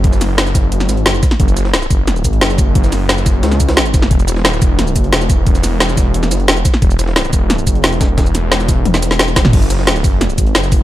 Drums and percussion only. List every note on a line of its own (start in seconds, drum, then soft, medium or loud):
0.04 kick loud
0.04 closed hi-hat medium
0.13 snare soft
0.13 shaker soft
0.21 snare soft
0.21 closed hi-hat loud
0.21 open hi-hat medium
0.21 shaker medium
0.38 snare loud
0.38 closed hi-hat medium
0.46 snare soft
0.46 shaker soft
0.55 kick loud
0.55 snare soft
0.55 closed hi-hat medium
0.55 shaker medium
0.72 closed hi-hat medium
0.80 snare soft
0.80 shaker soft
0.89 snare medium
0.89 closed hi-hat medium
0.89 shaker medium
0.97 closed hi-hat soft
1.06 snare loud
1.06 closed hi-hat medium
1.14 shaker soft
1.23 kick loud
1.23 snare medium
1.23 closed hi-hat loud
1.23 closed hi-hat medium
1.23 shaker medium
1.31 snare medium
1.40 kick loud
1.40 closed hi-hat medium
1.48 closed hi-hat soft
1.48 shaker soft
1.57 snare soft
1.57 closed hi-hat medium
1.57 shaker medium
1.65 snare medium
1.74 snare loud
1.74 closed hi-hat medium
1.82 snare soft
1.82 shaker soft
1.91 kick loud
1.91 closed hi-hat medium
1.91 shaker medium
2.07 snare medium
2.07 closed hi-hat medium
2.16 shaker soft
2.24 kick medium
2.24 closed hi-hat medium
2.24 shaker medium
2.33 closed hi-hat soft
2.41 snare loud
2.41 closed hi-hat medium
2.50 snare medium
2.50 shaker soft
2.58 kick loud
2.58 closed hi-hat medium
2.58 shaker medium
2.75 kick loud
2.75 closed hi-hat medium
2.84 snare soft
2.84 shaker soft
2.92 snare soft
2.92 closed hi-hat medium
2.92 open hi-hat medium
2.92 shaker medium
3.09 snare loud
3.09 closed hi-hat medium
3.18 snare soft
3.18 shaker soft
3.26 kick loud
3.26 snare soft
3.26 closed hi-hat medium
3.26 shaker medium
3.43 snare loud
3.43 closed hi-hat medium
3.52 snare soft
3.52 shaker soft
3.60 kick medium
3.60 closed hi-hat medium
3.60 shaker medium
3.69 snare loud
3.69 closed hi-hat medium
3.77 snare loud
3.77 closed hi-hat medium
3.85 closed hi-hat medium
3.85 shaker soft
3.94 kick loud
3.94 snare soft
3.94 closed hi-hat medium
3.94 shaker medium
4.02 snare soft
4.11 kick loud
4.11 closed hi-hat medium
4.19 closed hi-hat soft
4.19 shaker soft
4.28 snare soft
4.28 closed hi-hat medium
4.28 shaker medium
4.36 snare medium
4.45 snare loud
4.45 closed hi-hat medium
4.53 snare soft
4.53 shaker soft
4.62 kick loud
4.62 closed hi-hat medium
4.62 shaker medium
4.79 snare medium
4.79 closed hi-hat medium
4.87 shaker soft
4.96 kick medium
4.96 closed hi-hat medium
4.96 shaker medium
5.04 closed hi-hat soft
5.13 snare loud
5.13 closed hi-hat medium
5.21 snare medium
5.21 shaker soft
5.30 kick loud
5.30 closed hi-hat medium
5.30 shaker medium
5.46 kick loud
5.46 closed hi-hat medium
5.55 snare soft
5.55 shaker soft
5.63 snare soft
5.63 closed hi-hat medium
5.63 open hi-hat medium
5.63 shaker medium
5.80 snare loud
5.80 closed hi-hat medium
5.89 snare soft
5.89 shaker soft
5.97 kick medium
5.97 snare soft
5.97 closed hi-hat medium
5.97 shaker medium
6.14 closed hi-hat medium
6.23 snare soft
6.23 shaker soft
6.31 snare medium
6.31 closed hi-hat medium
6.31 shaker medium
6.40 closed hi-hat soft
6.48 snare loud
6.48 closed hi-hat medium
6.57 shaker soft
6.65 kick loud
6.65 snare medium
6.65 closed hi-hat medium
6.65 shaker medium
6.74 snare soft
6.82 kick loud
6.82 closed hi-hat medium
6.91 closed hi-hat soft
6.91 shaker soft
6.99 snare soft
6.99 closed hi-hat medium
6.99 closed hi-hat loud
6.99 shaker medium
7.08 snare medium
7.16 snare loud
7.16 closed hi-hat medium
7.24 snare soft
7.24 shaker soft
7.33 kick loud
7.33 closed hi-hat loud
7.33 closed hi-hat medium
7.33 shaker medium
7.50 snare medium
7.50 closed hi-hat medium
7.58 shaker soft
7.67 kick medium
7.67 closed hi-hat loud
7.67 closed hi-hat medium
7.67 shaker medium
7.75 closed hi-hat soft
7.84 snare loud
7.84 closed hi-hat medium
7.92 snare medium
7.92 shaker soft
8.01 kick loud
8.01 snare loud
8.01 closed hi-hat medium
8.01 shaker medium
8.18 kick loud
8.18 snare loud
8.18 closed hi-hat medium
8.26 closed hi-hat soft
8.26 shaker soft
8.35 snare soft
8.35 closed hi-hat loud
8.35 shaker medium
8.52 snare loud
8.52 closed hi-hat medium
8.60 snare soft
8.60 shaker soft
8.69 kick medium
8.69 snare soft
8.69 closed hi-hat medium
8.69 shaker medium
8.85 closed hi-hat medium
8.85 high tom medium
8.94 snare medium
8.94 snare soft
8.94 shaker soft
9.02 snare soft
9.02 closed hi-hat medium
9.02 closed hi-hat loud
9.02 shaker medium
9.11 snare medium
9.19 snare loud
9.19 closed hi-hat medium
9.28 snare soft
9.28 shaker soft
9.36 kick loud
9.36 snare loud
9.36 closed hi-hat loud
9.36 closed hi-hat medium
9.36 shaker medium
9.45 snare soft
9.45 mid tom medium
9.53 kick loud
9.53 closed hi-hat medium
9.53 crash medium
9.62 closed hi-hat soft
9.62 shaker soft
9.70 snare soft
9.70 closed hi-hat loud
9.70 closed hi-hat medium
9.70 shaker medium
9.79 snare medium
9.87 snare loud
9.87 closed hi-hat medium
9.96 snare soft
9.96 shaker soft
10.04 kick loud
10.04 closed hi-hat medium
10.04 open hi-hat medium
10.04 shaker medium
10.21 snare medium
10.21 closed hi-hat medium
10.30 shaker soft
10.38 kick medium
10.38 closed hi-hat loud
10.38 closed hi-hat medium
10.38 shaker medium
10.47 closed hi-hat soft
10.55 snare loud
10.55 closed hi-hat medium
10.63 snare medium
10.63 shaker soft
10.72 kick loud
10.72 closed hi-hat medium
10.72 open hi-hat medium
10.72 shaker medium